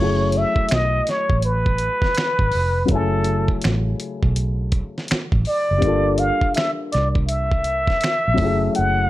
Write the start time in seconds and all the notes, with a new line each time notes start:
Already playing: F#1 F#3 A3 C#4 C#5
0.00 E4 G#4
0.32 closed hi-hat
0.37 E5
0.56 kick
0.69 B1, finger snap, snare, closed hi-hat
0.73 D#5
1.07 C#5, snare, closed hi-hat
1.30 A1, kick
1.42 B4, closed hi-hat
1.66 kick
1.78 closed hi-hat
2.02 kick, snare
2.15 finger snap, snare, closed hi-hat
2.39 G#1, kick
2.52 F1, open hi-hat
2.85 F#3 A3, kick, closed hi-hat
2.90 F#1 C#3 E4 A4
2.95 G#5
3.24 closed hi-hat
3.48 kick
3.62 A1, finger snap, snare, closed hi-hat
4.00 closed hi-hat
4.23 B1, kick
4.36 closed hi-hat
4.72 kick, closed hi-hat
4.98 snare
5.08 finger snap, muted fingered electric bass stroke, snare, closed hi-hat
5.32 A1, kick
5.45 D5, open hi-hat
5.71 F#1
5.78 G3 A#3
5.82 G1 D4 F4, kick, closed hi-hat
5.87 A4
6.18 F5, closed hi-hat
6.41 kick
6.54 E5, finger snap, snare, closed hi-hat
6.93 C2 D5, snare, closed hi-hat
7.15 kick
7.28 E5, closed hi-hat
7.52 kick
7.64 closed hi-hat
7.87 kick, snare
8.01 finger snap, snare, closed hi-hat
8.28 A#1
8.34 F#3 A3, open hi-hat
8.38 F#1 C#4 E4, kick
8.44 G#4
8.75 F#1 F#5, closed hi-hat